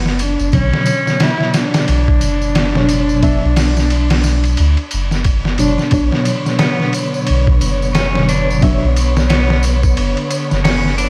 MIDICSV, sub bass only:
0, 0, Header, 1, 2, 480
1, 0, Start_track
1, 0, Key_signature, 2, "minor"
1, 0, Tempo, 674157
1, 382, Time_signature, 4, 2, 24, 8
1, 7896, End_track
2, 0, Start_track
2, 0, Title_t, "Sub bass"
2, 0, Program_c, 0, 38
2, 0, Note_on_c, 0, 30, 87
2, 256, Note_off_c, 0, 30, 0
2, 282, Note_on_c, 0, 30, 87
2, 368, Note_off_c, 0, 30, 0
2, 383, Note_on_c, 0, 35, 97
2, 508, Note_off_c, 0, 35, 0
2, 1342, Note_on_c, 0, 35, 99
2, 1558, Note_off_c, 0, 35, 0
2, 1586, Note_on_c, 0, 30, 81
2, 2420, Note_off_c, 0, 30, 0
2, 2453, Note_on_c, 0, 35, 90
2, 3247, Note_off_c, 0, 35, 0
2, 3269, Note_on_c, 0, 38, 101
2, 3391, Note_off_c, 0, 38, 0
2, 3511, Note_on_c, 0, 30, 87
2, 3967, Note_off_c, 0, 30, 0
2, 3988, Note_on_c, 0, 30, 90
2, 4111, Note_off_c, 0, 30, 0
2, 4219, Note_on_c, 0, 35, 101
2, 4346, Note_off_c, 0, 35, 0
2, 5193, Note_on_c, 0, 35, 97
2, 5404, Note_off_c, 0, 35, 0
2, 5427, Note_on_c, 0, 30, 80
2, 6260, Note_off_c, 0, 30, 0
2, 6292, Note_on_c, 0, 35, 93
2, 7087, Note_off_c, 0, 35, 0
2, 7104, Note_on_c, 0, 30, 83
2, 7229, Note_off_c, 0, 30, 0
2, 7488, Note_on_c, 0, 30, 86
2, 7896, Note_off_c, 0, 30, 0
2, 7896, End_track
0, 0, End_of_file